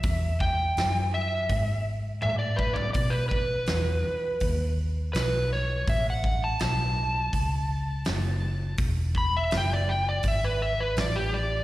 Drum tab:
HH |o---o---o-------|o---o---o---o---|o---o---o---o---|o---o---o---o---|
SD |----o-----------|----o-------o---|----o-------o---|----o-------o---|
T1 |------------o---|----------------|----------------|----------------|
FT |---------------o|----------------|----------------|----------------|
BD |o-o-----o-----o-|o-o-----o-------|o-o-----o-------|o-o-----o-------|